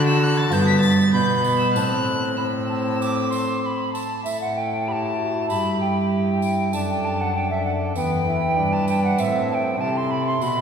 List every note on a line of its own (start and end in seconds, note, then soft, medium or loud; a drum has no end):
0.00 0.50 D3 loud
0.00 0.54 F#4 medium
0.00 0.86 A5 medium
0.07 0.25 E6 loud
0.23 0.39 F#6 loud
0.37 0.54 A6 loud
0.51 1.15 G2 medium
0.51 0.93 B3 medium
0.51 0.67 G6 loud
0.51 tambourine medium
0.68 0.80 B6 loud
0.81 1.12 A6 loud
0.81 tambourine medium
1.13 1.77 B2 medium
1.13 1.77 B3 medium
1.13 1.72 B5 medium
1.13 1.58 G6 loud
1.44 tambourine medium
1.59 1.73 E6 medium
1.74 4.06 A2 medium
1.74 2.38 C4 medium
1.74 2.31 A5 medium
1.74 2.38 F#6 loud
1.74 tambourine medium
2.37 3.92 C4 medium
2.37 2.44 B5 medium
2.37 3.94 E6 medium
2.70 3.00 A5 medium
3.00 3.32 D6 medium
3.00 tambourine medium
3.31 3.62 C6 medium
3.31 tambourine medium
3.63 3.92 B5 medium
3.63 3.67 C6 medium
3.93 4.24 A5 medium
3.93 tambourine soft
4.24 5.52 A2 medium
4.24 6.69 E4 medium
4.24 4.89 A4 soft
4.24 4.40 E5 medium
4.24 tambourine medium
4.41 4.56 F#5 medium
4.56 4.89 G5 medium
4.88 5.18 G4 medium
4.88 4.93 B5 medium
4.92 5.49 A5 medium
5.18 5.52 F#4 medium
5.49 6.75 G2 medium
5.49 6.74 G4 medium
5.49 5.80 B5 medium
5.49 tambourine soft
5.81 6.71 G5 medium
6.42 tambourine soft
6.73 7.95 F#2 medium
6.73 7.34 D4 medium
6.73 7.98 A4 medium
6.73 6.88 A5 medium
6.73 tambourine medium
6.90 7.06 G5 medium
7.05 7.22 A5 medium
7.21 7.34 F#5 medium
7.35 7.95 D4 medium
7.35 7.50 G5 medium
7.51 7.65 E5 medium
7.65 7.72 F#5 medium
7.96 8.59 E2 medium
7.96 8.26 B3 medium
7.96 9.81 B4 medium
7.96 8.74 G5 medium
7.96 tambourine soft
8.27 8.58 E4 medium
8.56 9.18 G2 medium
8.56 9.21 D4 medium
8.73 8.88 A5 medium
8.88 9.04 G5 medium
8.88 tambourine soft
9.05 9.21 F#5 medium
9.18 9.79 A2 medium
9.18 9.81 C4 medium
9.18 9.50 E5 medium
9.18 tambourine medium
9.51 9.56 A5 medium
9.55 9.82 G5 medium
9.80 10.41 C3 medium
9.80 10.61 E4 medium
9.80 10.43 A4 medium
9.80 9.98 A5 medium
9.97 10.13 C6 medium
10.11 10.27 B5 medium
10.27 10.44 C6 medium
10.41 10.61 B2 medium
10.41 10.61 F#4 medium
10.41 10.61 B5 medium
10.41 tambourine soft